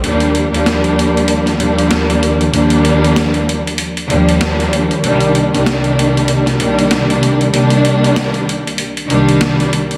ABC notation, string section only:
X:1
M:4/4
L:1/16
Q:"Swing 16ths" 1/4=96
K:Eb
V:1 name="String section" clef=bass
[E,,F,G,B,D]3 [E,,F,G,B,D]6 z [E,,F,G,B,D]6 | [E,,F,G,B,D]8 z2 [E,,F,G,B,D]6 | [C,,E,G,B,D]3 [C,,E,G,B,D]6 z [C,,E,G,B,D]6 | [C,,E,G,B,D]8 z2 [C,,E,G,B,D]6 |]